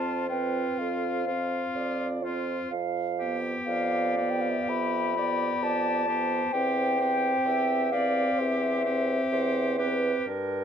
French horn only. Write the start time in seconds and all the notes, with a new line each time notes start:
Already playing: C4
0.29 C4
1.28 C4
2.24 C4
3.20 B3
4.18 B3
5.16 B3
6.08 B3
6.54 C4
7.00 C4
7.94 C4
8.87 C4
9.79 C4